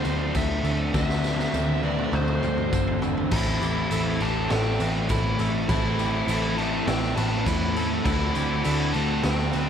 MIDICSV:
0, 0, Header, 1, 8, 480
1, 0, Start_track
1, 0, Tempo, 593472
1, 764, Time_signature, 4, 2, 24, 8
1, 7841, End_track
2, 0, Start_track
2, 0, Title_t, "Clean electric guitar"
2, 0, Program_c, 0, 27
2, 0, Note_on_c, 0, 72, 85
2, 39, Note_off_c, 0, 72, 0
2, 39, Note_on_c, 0, 72, 80
2, 281, Note_on_c, 0, 69, 85
2, 519, Note_off_c, 0, 69, 0
2, 519, Note_on_c, 0, 69, 85
2, 761, Note_off_c, 0, 69, 0
2, 764, Note_on_c, 0, 69, 83
2, 1240, Note_off_c, 0, 69, 0
2, 1243, Note_off_c, 0, 72, 0
2, 1243, Note_on_c, 0, 72, 89
2, 1484, Note_off_c, 0, 72, 0
2, 1491, Note_on_c, 0, 71, 72
2, 1722, Note_off_c, 0, 71, 0
2, 1725, Note_on_c, 0, 72, 85
2, 1959, Note_off_c, 0, 72, 0
2, 1969, Note_on_c, 0, 72, 73
2, 2202, Note_off_c, 0, 72, 0
2, 2205, Note_on_c, 0, 69, 80
2, 2437, Note_off_c, 0, 69, 0
2, 2447, Note_on_c, 0, 69, 79
2, 2675, Note_off_c, 0, 69, 0
2, 2685, Note_on_c, 0, 69, 84
2, 2922, Note_off_c, 0, 69, 0
2, 2925, Note_on_c, 0, 67, 83
2, 3166, Note_off_c, 0, 67, 0
2, 3169, Note_on_c, 0, 69, 84
2, 3408, Note_off_c, 0, 69, 0
2, 3411, Note_on_c, 0, 67, 75
2, 3652, Note_off_c, 0, 67, 0
2, 3655, Note_on_c, 0, 69, 77
2, 3892, Note_on_c, 0, 71, 75
2, 3916, Note_off_c, 0, 69, 0
2, 4366, Note_off_c, 0, 71, 0
2, 4370, Note_on_c, 0, 69, 84
2, 4618, Note_off_c, 0, 69, 0
2, 4618, Note_on_c, 0, 69, 99
2, 4846, Note_off_c, 0, 69, 0
2, 4849, Note_on_c, 0, 67, 85
2, 5086, Note_off_c, 0, 67, 0
2, 5098, Note_on_c, 0, 69, 92
2, 5332, Note_off_c, 0, 69, 0
2, 5335, Note_on_c, 0, 67, 71
2, 5565, Note_on_c, 0, 69, 92
2, 5569, Note_off_c, 0, 67, 0
2, 5800, Note_off_c, 0, 69, 0
2, 5803, Note_on_c, 0, 71, 78
2, 6282, Note_off_c, 0, 71, 0
2, 6285, Note_on_c, 0, 69, 91
2, 6510, Note_off_c, 0, 69, 0
2, 6520, Note_on_c, 0, 69, 103
2, 6758, Note_off_c, 0, 69, 0
2, 6761, Note_on_c, 0, 67, 78
2, 6989, Note_off_c, 0, 67, 0
2, 6993, Note_on_c, 0, 69, 94
2, 7232, Note_off_c, 0, 69, 0
2, 7235, Note_on_c, 0, 67, 73
2, 7467, Note_off_c, 0, 67, 0
2, 7471, Note_on_c, 0, 69, 88
2, 7711, Note_off_c, 0, 69, 0
2, 7714, Note_on_c, 0, 71, 74
2, 7841, Note_off_c, 0, 71, 0
2, 7841, End_track
3, 0, Start_track
3, 0, Title_t, "Lead electric guitar"
3, 0, Program_c, 1, 29
3, 0, Note_on_c, 1, 72, 94
3, 296, Note_on_c, 1, 76, 99
3, 299, Note_off_c, 1, 72, 0
3, 625, Note_off_c, 1, 76, 0
3, 779, Note_on_c, 1, 76, 103
3, 1487, Note_off_c, 1, 76, 0
3, 1491, Note_on_c, 1, 74, 86
3, 1735, Note_off_c, 1, 74, 0
3, 1735, Note_on_c, 1, 72, 74
3, 2418, Note_off_c, 1, 72, 0
3, 2688, Note_on_c, 1, 64, 106
3, 3412, Note_on_c, 1, 62, 92
3, 3428, Note_off_c, 1, 64, 0
3, 3646, Note_off_c, 1, 62, 0
3, 3649, Note_on_c, 1, 60, 96
3, 4125, Note_on_c, 1, 64, 117
3, 4141, Note_off_c, 1, 60, 0
3, 4460, Note_off_c, 1, 64, 0
3, 4601, Note_on_c, 1, 64, 115
3, 5319, Note_on_c, 1, 62, 106
3, 5343, Note_off_c, 1, 64, 0
3, 5553, Note_off_c, 1, 62, 0
3, 5556, Note_on_c, 1, 60, 97
3, 5792, Note_off_c, 1, 60, 0
3, 5795, Note_on_c, 1, 62, 97
3, 6039, Note_on_c, 1, 64, 104
3, 6046, Note_off_c, 1, 62, 0
3, 6375, Note_off_c, 1, 64, 0
3, 6510, Note_on_c, 1, 64, 116
3, 7220, Note_on_c, 1, 62, 88
3, 7256, Note_off_c, 1, 64, 0
3, 7468, Note_off_c, 1, 62, 0
3, 7471, Note_on_c, 1, 60, 90
3, 7841, Note_off_c, 1, 60, 0
3, 7841, End_track
4, 0, Start_track
4, 0, Title_t, "Overdriven electric guitar"
4, 0, Program_c, 2, 29
4, 0, Note_on_c, 2, 50, 71
4, 0, Note_on_c, 2, 57, 79
4, 0, Note_on_c, 2, 60, 80
4, 0, Note_on_c, 2, 66, 89
4, 741, Note_off_c, 2, 50, 0
4, 743, Note_off_c, 2, 66, 0
4, 756, Note_off_c, 2, 57, 0
4, 764, Note_off_c, 2, 60, 0
4, 767, Note_on_c, 2, 60, 92
4, 773, Note_on_c, 2, 66, 109
4, 1467, Note_off_c, 2, 66, 0
4, 1472, Note_off_c, 2, 60, 0
4, 1477, Note_on_c, 2, 66, 81
4, 1489, Note_on_c, 2, 60, 75
4, 2667, Note_off_c, 2, 66, 0
4, 2673, Note_off_c, 2, 60, 0
4, 2701, Note_on_c, 2, 60, 104
4, 2704, Note_on_c, 2, 64, 93
4, 3399, Note_off_c, 2, 64, 0
4, 3402, Note_on_c, 2, 64, 88
4, 3404, Note_off_c, 2, 60, 0
4, 3407, Note_on_c, 2, 60, 82
4, 4589, Note_off_c, 2, 64, 0
4, 4614, Note_off_c, 2, 60, 0
4, 4617, Note_on_c, 2, 60, 103
4, 4623, Note_on_c, 2, 64, 89
4, 5299, Note_off_c, 2, 64, 0
4, 5309, Note_on_c, 2, 64, 86
4, 5315, Note_off_c, 2, 60, 0
4, 5318, Note_on_c, 2, 60, 92
4, 6500, Note_off_c, 2, 64, 0
4, 6505, Note_off_c, 2, 60, 0
4, 6518, Note_on_c, 2, 60, 91
4, 6523, Note_on_c, 2, 66, 84
4, 7219, Note_off_c, 2, 66, 0
4, 7221, Note_off_c, 2, 60, 0
4, 7223, Note_on_c, 2, 66, 92
4, 7231, Note_on_c, 2, 60, 88
4, 7841, Note_off_c, 2, 60, 0
4, 7841, Note_off_c, 2, 66, 0
4, 7841, End_track
5, 0, Start_track
5, 0, Title_t, "Overdriven electric guitar"
5, 0, Program_c, 3, 29
5, 0, Note_on_c, 3, 50, 93
5, 0, Note_on_c, 3, 57, 102
5, 0, Note_on_c, 3, 62, 110
5, 278, Note_off_c, 3, 50, 0
5, 288, Note_on_c, 3, 50, 95
5, 289, Note_off_c, 3, 62, 0
5, 292, Note_off_c, 3, 57, 0
5, 295, Note_on_c, 3, 57, 87
5, 299, Note_on_c, 3, 62, 88
5, 516, Note_off_c, 3, 50, 0
5, 526, Note_off_c, 3, 57, 0
5, 526, Note_on_c, 3, 50, 89
5, 528, Note_off_c, 3, 62, 0
5, 529, Note_on_c, 3, 57, 89
5, 538, Note_on_c, 3, 62, 108
5, 756, Note_off_c, 3, 50, 0
5, 758, Note_off_c, 3, 57, 0
5, 761, Note_off_c, 3, 62, 0
5, 766, Note_on_c, 3, 50, 89
5, 767, Note_on_c, 3, 57, 110
5, 771, Note_on_c, 3, 62, 116
5, 1230, Note_off_c, 3, 50, 0
5, 1233, Note_off_c, 3, 57, 0
5, 1240, Note_off_c, 3, 62, 0
5, 1240, Note_on_c, 3, 50, 81
5, 1243, Note_on_c, 3, 57, 78
5, 1250, Note_on_c, 3, 62, 85
5, 1472, Note_off_c, 3, 50, 0
5, 1477, Note_off_c, 3, 57, 0
5, 1479, Note_off_c, 3, 62, 0
5, 1481, Note_on_c, 3, 50, 82
5, 1486, Note_on_c, 3, 57, 86
5, 1489, Note_on_c, 3, 62, 92
5, 1713, Note_off_c, 3, 50, 0
5, 1717, Note_off_c, 3, 57, 0
5, 1723, Note_off_c, 3, 62, 0
5, 1723, Note_on_c, 3, 50, 89
5, 1727, Note_on_c, 3, 57, 95
5, 1733, Note_on_c, 3, 62, 102
5, 2196, Note_off_c, 3, 50, 0
5, 2199, Note_off_c, 3, 57, 0
5, 2204, Note_off_c, 3, 62, 0
5, 2205, Note_on_c, 3, 50, 82
5, 2209, Note_on_c, 3, 57, 92
5, 2214, Note_on_c, 3, 62, 92
5, 2437, Note_off_c, 3, 50, 0
5, 2442, Note_off_c, 3, 57, 0
5, 2447, Note_on_c, 3, 50, 88
5, 2449, Note_off_c, 3, 62, 0
5, 2451, Note_on_c, 3, 57, 88
5, 2459, Note_on_c, 3, 62, 97
5, 2672, Note_off_c, 3, 50, 0
5, 2674, Note_off_c, 3, 57, 0
5, 2678, Note_off_c, 3, 62, 0
5, 2688, Note_on_c, 3, 45, 89
5, 2690, Note_on_c, 3, 52, 102
5, 2697, Note_on_c, 3, 57, 107
5, 3160, Note_off_c, 3, 45, 0
5, 3163, Note_on_c, 3, 45, 82
5, 3164, Note_off_c, 3, 52, 0
5, 3167, Note_off_c, 3, 57, 0
5, 3167, Note_on_c, 3, 52, 82
5, 3171, Note_on_c, 3, 57, 95
5, 3400, Note_off_c, 3, 45, 0
5, 3401, Note_off_c, 3, 52, 0
5, 3403, Note_on_c, 3, 45, 77
5, 3404, Note_on_c, 3, 52, 88
5, 3408, Note_off_c, 3, 57, 0
5, 3411, Note_on_c, 3, 57, 97
5, 3632, Note_off_c, 3, 45, 0
5, 3639, Note_off_c, 3, 52, 0
5, 3642, Note_on_c, 3, 45, 99
5, 3645, Note_off_c, 3, 57, 0
5, 3648, Note_on_c, 3, 52, 92
5, 3648, Note_on_c, 3, 57, 104
5, 4114, Note_off_c, 3, 45, 0
5, 4115, Note_off_c, 3, 52, 0
5, 4124, Note_on_c, 3, 45, 91
5, 4125, Note_on_c, 3, 52, 93
5, 4130, Note_off_c, 3, 57, 0
5, 4133, Note_on_c, 3, 57, 98
5, 4359, Note_off_c, 3, 45, 0
5, 4364, Note_off_c, 3, 52, 0
5, 4369, Note_on_c, 3, 45, 93
5, 4371, Note_off_c, 3, 57, 0
5, 4374, Note_on_c, 3, 52, 100
5, 4374, Note_on_c, 3, 57, 97
5, 4597, Note_off_c, 3, 45, 0
5, 4602, Note_off_c, 3, 52, 0
5, 4607, Note_on_c, 3, 45, 99
5, 4611, Note_off_c, 3, 57, 0
5, 4612, Note_on_c, 3, 52, 96
5, 4614, Note_on_c, 3, 57, 113
5, 5070, Note_off_c, 3, 45, 0
5, 5074, Note_off_c, 3, 52, 0
5, 5080, Note_on_c, 3, 45, 89
5, 5082, Note_off_c, 3, 57, 0
5, 5083, Note_on_c, 3, 52, 96
5, 5086, Note_on_c, 3, 57, 91
5, 5309, Note_off_c, 3, 45, 0
5, 5315, Note_off_c, 3, 52, 0
5, 5319, Note_on_c, 3, 45, 78
5, 5324, Note_off_c, 3, 57, 0
5, 5324, Note_on_c, 3, 52, 96
5, 5328, Note_on_c, 3, 57, 97
5, 5543, Note_off_c, 3, 45, 0
5, 5548, Note_off_c, 3, 52, 0
5, 5553, Note_off_c, 3, 57, 0
5, 5553, Note_on_c, 3, 45, 112
5, 5557, Note_on_c, 3, 52, 112
5, 5562, Note_on_c, 3, 57, 102
5, 6020, Note_off_c, 3, 45, 0
5, 6022, Note_off_c, 3, 52, 0
5, 6028, Note_off_c, 3, 57, 0
5, 6029, Note_on_c, 3, 45, 95
5, 6032, Note_on_c, 3, 52, 85
5, 6038, Note_on_c, 3, 57, 102
5, 6263, Note_off_c, 3, 45, 0
5, 6271, Note_off_c, 3, 52, 0
5, 6273, Note_off_c, 3, 57, 0
5, 6273, Note_on_c, 3, 45, 93
5, 6281, Note_on_c, 3, 52, 97
5, 6283, Note_on_c, 3, 57, 125
5, 6503, Note_off_c, 3, 45, 0
5, 6507, Note_off_c, 3, 52, 0
5, 6508, Note_off_c, 3, 57, 0
5, 6513, Note_on_c, 3, 50, 105
5, 6518, Note_on_c, 3, 57, 101
5, 6519, Note_on_c, 3, 62, 102
5, 6980, Note_off_c, 3, 50, 0
5, 6986, Note_off_c, 3, 57, 0
5, 6989, Note_on_c, 3, 50, 89
5, 6996, Note_on_c, 3, 57, 82
5, 6998, Note_off_c, 3, 62, 0
5, 7002, Note_on_c, 3, 62, 93
5, 7229, Note_off_c, 3, 50, 0
5, 7233, Note_off_c, 3, 57, 0
5, 7239, Note_on_c, 3, 50, 77
5, 7242, Note_on_c, 3, 57, 95
5, 7244, Note_off_c, 3, 62, 0
5, 7247, Note_on_c, 3, 62, 98
5, 7461, Note_off_c, 3, 50, 0
5, 7464, Note_off_c, 3, 57, 0
5, 7469, Note_off_c, 3, 62, 0
5, 7471, Note_on_c, 3, 50, 104
5, 7473, Note_on_c, 3, 57, 99
5, 7479, Note_on_c, 3, 62, 125
5, 7841, Note_off_c, 3, 50, 0
5, 7841, Note_off_c, 3, 57, 0
5, 7841, Note_off_c, 3, 62, 0
5, 7841, End_track
6, 0, Start_track
6, 0, Title_t, "Overdriven electric guitar"
6, 0, Program_c, 4, 29
6, 0, Note_on_c, 4, 50, 90
6, 0, Note_on_c, 4, 57, 91
6, 0, Note_on_c, 4, 60, 95
6, 0, Note_on_c, 4, 66, 92
6, 746, Note_off_c, 4, 50, 0
6, 759, Note_off_c, 4, 66, 0
6, 759, Note_on_c, 4, 50, 95
6, 764, Note_off_c, 4, 57, 0
6, 767, Note_on_c, 4, 57, 88
6, 774, Note_off_c, 4, 60, 0
6, 777, Note_on_c, 4, 60, 91
6, 786, Note_on_c, 4, 66, 88
6, 2669, Note_off_c, 4, 50, 0
6, 2673, Note_off_c, 4, 57, 0
6, 2678, Note_off_c, 4, 60, 0
6, 2678, Note_on_c, 4, 45, 96
6, 2682, Note_off_c, 4, 66, 0
6, 2687, Note_on_c, 4, 52, 93
6, 2695, Note_on_c, 4, 57, 81
6, 2705, Note_on_c, 4, 60, 85
6, 2712, Note_on_c, 4, 64, 88
6, 4587, Note_off_c, 4, 45, 0
6, 4591, Note_off_c, 4, 52, 0
6, 4596, Note_on_c, 4, 45, 82
6, 4604, Note_off_c, 4, 64, 0
6, 4606, Note_on_c, 4, 52, 92
6, 4610, Note_off_c, 4, 57, 0
6, 4613, Note_on_c, 4, 57, 92
6, 4614, Note_off_c, 4, 60, 0
6, 4617, Note_on_c, 4, 60, 98
6, 4622, Note_on_c, 4, 64, 102
6, 6498, Note_off_c, 4, 52, 0
6, 6501, Note_on_c, 4, 50, 94
6, 6503, Note_off_c, 4, 45, 0
6, 6504, Note_off_c, 4, 57, 0
6, 6514, Note_off_c, 4, 60, 0
6, 6514, Note_on_c, 4, 57, 95
6, 6516, Note_off_c, 4, 64, 0
6, 6524, Note_on_c, 4, 60, 86
6, 6535, Note_on_c, 4, 66, 105
6, 7841, Note_off_c, 4, 50, 0
6, 7841, Note_off_c, 4, 57, 0
6, 7841, Note_off_c, 4, 60, 0
6, 7841, Note_off_c, 4, 66, 0
6, 7841, End_track
7, 0, Start_track
7, 0, Title_t, "Picked electric bass"
7, 0, Program_c, 5, 34
7, 42, Note_on_c, 5, 38, 81
7, 254, Note_off_c, 5, 38, 0
7, 286, Note_on_c, 5, 38, 96
7, 496, Note_off_c, 5, 38, 0
7, 515, Note_on_c, 5, 38, 82
7, 730, Note_off_c, 5, 38, 0
7, 762, Note_on_c, 5, 38, 92
7, 1185, Note_off_c, 5, 38, 0
7, 1243, Note_on_c, 5, 38, 78
7, 1666, Note_off_c, 5, 38, 0
7, 1718, Note_on_c, 5, 38, 91
7, 1932, Note_off_c, 5, 38, 0
7, 1969, Note_on_c, 5, 38, 85
7, 2178, Note_off_c, 5, 38, 0
7, 2207, Note_on_c, 5, 31, 81
7, 2628, Note_off_c, 5, 31, 0
7, 2685, Note_on_c, 5, 33, 105
7, 2896, Note_off_c, 5, 33, 0
7, 2925, Note_on_c, 5, 33, 79
7, 3136, Note_off_c, 5, 33, 0
7, 3168, Note_on_c, 5, 33, 83
7, 3377, Note_off_c, 5, 33, 0
7, 3404, Note_on_c, 5, 33, 88
7, 3616, Note_off_c, 5, 33, 0
7, 3653, Note_on_c, 5, 33, 93
7, 3860, Note_off_c, 5, 33, 0
7, 3887, Note_on_c, 5, 33, 91
7, 4097, Note_off_c, 5, 33, 0
7, 4123, Note_on_c, 5, 33, 90
7, 4335, Note_off_c, 5, 33, 0
7, 4366, Note_on_c, 5, 33, 91
7, 4576, Note_off_c, 5, 33, 0
7, 4603, Note_on_c, 5, 33, 101
7, 5025, Note_off_c, 5, 33, 0
7, 5074, Note_on_c, 5, 33, 88
7, 5500, Note_off_c, 5, 33, 0
7, 5560, Note_on_c, 5, 33, 92
7, 5772, Note_off_c, 5, 33, 0
7, 5801, Note_on_c, 5, 33, 89
7, 6012, Note_off_c, 5, 33, 0
7, 6037, Note_on_c, 5, 40, 89
7, 6460, Note_off_c, 5, 40, 0
7, 6516, Note_on_c, 5, 38, 109
7, 6729, Note_off_c, 5, 38, 0
7, 6760, Note_on_c, 5, 38, 89
7, 6971, Note_off_c, 5, 38, 0
7, 7005, Note_on_c, 5, 38, 93
7, 7214, Note_off_c, 5, 38, 0
7, 7240, Note_on_c, 5, 38, 97
7, 7451, Note_off_c, 5, 38, 0
7, 7476, Note_on_c, 5, 38, 98
7, 7688, Note_off_c, 5, 38, 0
7, 7721, Note_on_c, 5, 38, 94
7, 7841, Note_off_c, 5, 38, 0
7, 7841, End_track
8, 0, Start_track
8, 0, Title_t, "Drums"
8, 37, Note_on_c, 9, 49, 56
8, 40, Note_on_c, 9, 54, 65
8, 118, Note_off_c, 9, 49, 0
8, 121, Note_off_c, 9, 54, 0
8, 281, Note_on_c, 9, 54, 89
8, 282, Note_on_c, 9, 36, 85
8, 285, Note_on_c, 9, 49, 82
8, 362, Note_off_c, 9, 54, 0
8, 363, Note_off_c, 9, 36, 0
8, 365, Note_off_c, 9, 49, 0
8, 521, Note_on_c, 9, 49, 60
8, 523, Note_on_c, 9, 54, 72
8, 602, Note_off_c, 9, 49, 0
8, 604, Note_off_c, 9, 54, 0
8, 762, Note_on_c, 9, 54, 64
8, 763, Note_on_c, 9, 36, 105
8, 763, Note_on_c, 9, 38, 58
8, 843, Note_off_c, 9, 54, 0
8, 844, Note_off_c, 9, 36, 0
8, 844, Note_off_c, 9, 38, 0
8, 885, Note_on_c, 9, 38, 60
8, 966, Note_off_c, 9, 38, 0
8, 1003, Note_on_c, 9, 54, 68
8, 1006, Note_on_c, 9, 38, 62
8, 1083, Note_off_c, 9, 54, 0
8, 1087, Note_off_c, 9, 38, 0
8, 1123, Note_on_c, 9, 38, 63
8, 1204, Note_off_c, 9, 38, 0
8, 1245, Note_on_c, 9, 48, 77
8, 1246, Note_on_c, 9, 54, 86
8, 1326, Note_off_c, 9, 48, 0
8, 1327, Note_off_c, 9, 54, 0
8, 1363, Note_on_c, 9, 48, 71
8, 1444, Note_off_c, 9, 48, 0
8, 1481, Note_on_c, 9, 48, 76
8, 1483, Note_on_c, 9, 54, 26
8, 1562, Note_off_c, 9, 48, 0
8, 1564, Note_off_c, 9, 54, 0
8, 1605, Note_on_c, 9, 47, 65
8, 1686, Note_off_c, 9, 47, 0
8, 1722, Note_on_c, 9, 47, 87
8, 1728, Note_on_c, 9, 54, 26
8, 1802, Note_off_c, 9, 47, 0
8, 1809, Note_off_c, 9, 54, 0
8, 1843, Note_on_c, 9, 47, 86
8, 1924, Note_off_c, 9, 47, 0
8, 1963, Note_on_c, 9, 45, 91
8, 1971, Note_on_c, 9, 54, 61
8, 2044, Note_off_c, 9, 45, 0
8, 2052, Note_off_c, 9, 54, 0
8, 2083, Note_on_c, 9, 45, 74
8, 2164, Note_off_c, 9, 45, 0
8, 2206, Note_on_c, 9, 36, 93
8, 2207, Note_on_c, 9, 54, 87
8, 2208, Note_on_c, 9, 45, 88
8, 2287, Note_off_c, 9, 36, 0
8, 2288, Note_off_c, 9, 54, 0
8, 2289, Note_off_c, 9, 45, 0
8, 2324, Note_on_c, 9, 43, 83
8, 2405, Note_off_c, 9, 43, 0
8, 2442, Note_on_c, 9, 43, 108
8, 2451, Note_on_c, 9, 54, 69
8, 2522, Note_off_c, 9, 43, 0
8, 2532, Note_off_c, 9, 54, 0
8, 2567, Note_on_c, 9, 43, 92
8, 2648, Note_off_c, 9, 43, 0
8, 2679, Note_on_c, 9, 49, 85
8, 2679, Note_on_c, 9, 57, 124
8, 2685, Note_on_c, 9, 36, 101
8, 2692, Note_on_c, 9, 54, 82
8, 2760, Note_off_c, 9, 49, 0
8, 2760, Note_off_c, 9, 57, 0
8, 2766, Note_off_c, 9, 36, 0
8, 2773, Note_off_c, 9, 54, 0
8, 2922, Note_on_c, 9, 49, 56
8, 2932, Note_on_c, 9, 54, 84
8, 3003, Note_off_c, 9, 49, 0
8, 3013, Note_off_c, 9, 54, 0
8, 3160, Note_on_c, 9, 49, 84
8, 3169, Note_on_c, 9, 54, 101
8, 3241, Note_off_c, 9, 49, 0
8, 3250, Note_off_c, 9, 54, 0
8, 3400, Note_on_c, 9, 49, 64
8, 3408, Note_on_c, 9, 54, 37
8, 3481, Note_off_c, 9, 49, 0
8, 3489, Note_off_c, 9, 54, 0
8, 3641, Note_on_c, 9, 38, 110
8, 3641, Note_on_c, 9, 49, 74
8, 3722, Note_off_c, 9, 38, 0
8, 3722, Note_off_c, 9, 49, 0
8, 3882, Note_on_c, 9, 54, 84
8, 3889, Note_on_c, 9, 49, 64
8, 3963, Note_off_c, 9, 54, 0
8, 3970, Note_off_c, 9, 49, 0
8, 4118, Note_on_c, 9, 54, 93
8, 4125, Note_on_c, 9, 36, 84
8, 4126, Note_on_c, 9, 49, 79
8, 4199, Note_off_c, 9, 54, 0
8, 4206, Note_off_c, 9, 36, 0
8, 4206, Note_off_c, 9, 49, 0
8, 4360, Note_on_c, 9, 54, 78
8, 4365, Note_on_c, 9, 49, 60
8, 4441, Note_off_c, 9, 54, 0
8, 4445, Note_off_c, 9, 49, 0
8, 4603, Note_on_c, 9, 36, 111
8, 4603, Note_on_c, 9, 49, 78
8, 4605, Note_on_c, 9, 54, 78
8, 4684, Note_off_c, 9, 36, 0
8, 4684, Note_off_c, 9, 49, 0
8, 4686, Note_off_c, 9, 54, 0
8, 4845, Note_on_c, 9, 49, 53
8, 4848, Note_on_c, 9, 54, 75
8, 4926, Note_off_c, 9, 49, 0
8, 4928, Note_off_c, 9, 54, 0
8, 5080, Note_on_c, 9, 49, 90
8, 5088, Note_on_c, 9, 54, 103
8, 5160, Note_off_c, 9, 49, 0
8, 5168, Note_off_c, 9, 54, 0
8, 5324, Note_on_c, 9, 49, 62
8, 5327, Note_on_c, 9, 54, 33
8, 5405, Note_off_c, 9, 49, 0
8, 5408, Note_off_c, 9, 54, 0
8, 5560, Note_on_c, 9, 38, 113
8, 5560, Note_on_c, 9, 49, 85
8, 5641, Note_off_c, 9, 38, 0
8, 5641, Note_off_c, 9, 49, 0
8, 5681, Note_on_c, 9, 38, 34
8, 5761, Note_off_c, 9, 38, 0
8, 5801, Note_on_c, 9, 49, 74
8, 5802, Note_on_c, 9, 54, 76
8, 5882, Note_off_c, 9, 49, 0
8, 5883, Note_off_c, 9, 54, 0
8, 6037, Note_on_c, 9, 36, 88
8, 6037, Note_on_c, 9, 49, 93
8, 6046, Note_on_c, 9, 54, 90
8, 6118, Note_off_c, 9, 36, 0
8, 6118, Note_off_c, 9, 49, 0
8, 6127, Note_off_c, 9, 54, 0
8, 6280, Note_on_c, 9, 49, 66
8, 6285, Note_on_c, 9, 54, 74
8, 6360, Note_off_c, 9, 49, 0
8, 6366, Note_off_c, 9, 54, 0
8, 6514, Note_on_c, 9, 49, 81
8, 6515, Note_on_c, 9, 36, 109
8, 6522, Note_on_c, 9, 54, 76
8, 6595, Note_off_c, 9, 49, 0
8, 6596, Note_off_c, 9, 36, 0
8, 6602, Note_off_c, 9, 54, 0
8, 6753, Note_on_c, 9, 49, 62
8, 6758, Note_on_c, 9, 54, 88
8, 6834, Note_off_c, 9, 49, 0
8, 6839, Note_off_c, 9, 54, 0
8, 6991, Note_on_c, 9, 54, 92
8, 6996, Note_on_c, 9, 49, 93
8, 7072, Note_off_c, 9, 54, 0
8, 7077, Note_off_c, 9, 49, 0
8, 7232, Note_on_c, 9, 49, 61
8, 7235, Note_on_c, 9, 54, 33
8, 7313, Note_off_c, 9, 49, 0
8, 7316, Note_off_c, 9, 54, 0
8, 7469, Note_on_c, 9, 38, 110
8, 7469, Note_on_c, 9, 49, 81
8, 7550, Note_off_c, 9, 38, 0
8, 7550, Note_off_c, 9, 49, 0
8, 7588, Note_on_c, 9, 38, 35
8, 7669, Note_off_c, 9, 38, 0
8, 7707, Note_on_c, 9, 49, 65
8, 7711, Note_on_c, 9, 54, 75
8, 7788, Note_off_c, 9, 49, 0
8, 7792, Note_off_c, 9, 54, 0
8, 7841, End_track
0, 0, End_of_file